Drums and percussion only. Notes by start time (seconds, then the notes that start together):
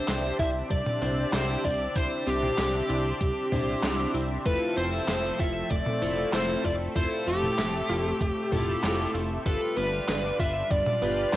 0.08 snare, clap, closed hi-hat
0.39 kick, open hi-hat
0.71 kick, closed hi-hat
0.86 mid tom
1.02 open hi-hat
1.33 snare, clap, closed hi-hat
1.64 kick, open hi-hat
1.96 kick, closed hi-hat
2.27 open hi-hat
2.43 mid tom
2.58 snare, clap, closed hi-hat
2.90 open hi-hat
3.21 kick, closed hi-hat
3.52 kick, open hi-hat, mid tom
3.83 snare, clap, closed hi-hat
4.15 open hi-hat
4.46 kick, closed hi-hat
4.77 open hi-hat
5.08 snare, clap, closed hi-hat
5.39 kick, open hi-hat
5.71 kick, closed hi-hat
5.86 mid tom
6.02 open hi-hat
6.33 snare, clap, closed hi-hat
6.64 kick, open hi-hat
6.96 kick, closed hi-hat
7.27 open hi-hat
7.43 mid tom
7.59 snare, clap, closed hi-hat
7.90 open hi-hat
8.21 kick, closed hi-hat
8.52 kick, open hi-hat, mid tom
8.84 snare, clap, closed hi-hat
9.15 open hi-hat
9.46 kick, closed hi-hat
9.77 open hi-hat
10.08 snare, clap, closed hi-hat
10.39 kick, open hi-hat
10.71 kick, closed hi-hat
10.86 mid tom
11.02 open hi-hat
11.33 snare, clap, closed hi-hat